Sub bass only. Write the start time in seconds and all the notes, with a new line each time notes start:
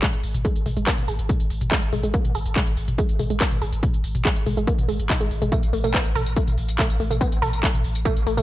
0.14 G#1
0.24 G#1
0.35 G#1
0.56 G#1
0.66 G#1
0.77 G#1
0.98 G#1
1.08 G#1
1.19 G#1
1.40 G#1
1.50 G#1
1.61 G#1
1.82 G#1
1.93 G#1
2.04 G#1
2.25 G#1
2.35 G#1
2.46 G#1
2.67 G#1
2.77 G#1
2.88 G#1
3.09 G#1
3.19 G#1
3.30 G#1
3.51 G#1
3.62 G#1
3.73 G#1
3.94 G#1
4.04 G#1
4.15 G#1
4.36 G#1
4.46 G#1
4.57 G#1
4.78 G#1
4.89 G#1
4.99 G#1
5.21 G#1
5.31 G#1
5.42 G#1
5.63 A1
5.73 A1
5.84 A1
6.05 A1
6.16 A1
6.26 A1
6.47 A1
6.58 A1
6.69 A1
6.90 A1
7.00 A1
7.11 A1
7.32 A1
7.42 A1
7.53 A1
7.74 A1
7.84 A1
7.95 A1
8.16 A1
8.26 A1
8.37 A1